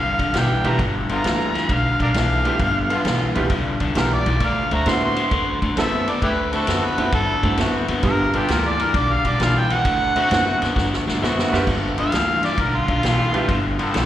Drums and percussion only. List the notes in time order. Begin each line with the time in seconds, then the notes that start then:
0.19 kick, ride
0.34 snare, ride
0.64 ride
0.79 kick, ride
1.09 ride
1.24 snare, ride
1.55 snare, ride
1.69 kick, ride
2.00 kick, ride
2.14 snare, ride
2.45 ride
2.59 kick, ride
2.90 ride
3.05 snare, ride
3.35 ride
3.50 kick, ride
3.80 kick, ride
3.95 snare, ride
4.26 ride
4.40 kick, ride
4.71 ride
4.86 snare, ride
5.16 ride
5.31 kick, ride
5.62 kick, ride
5.77 snare, ride
6.08 ride
6.22 kick, ride
6.53 ride
6.67 snare, ride
6.98 ride
7.12 kick, ride
7.43 kick, ride
7.57 snare, ride
7.88 ride
8.03 kick, ride
8.34 ride
8.48 snare, ride
8.80 ride
8.94 kick, ride
9.25 kick, ride
9.40 snare, ride
9.70 ride
9.85 kick, ride
10.16 ride
10.31 snare, ride
10.62 snare, ride
10.76 kick, snare
10.93 snare
11.09 snare
11.24 snare
11.39 snare
11.54 snare
11.67 kick, crash
11.98 ride
12.12 snare, ride
12.43 snare, ride
12.58 kick, ride
12.88 kick, ride
13.03 snare, ride
13.34 ride
13.49 kick, ride
13.79 ride
13.94 snare, ride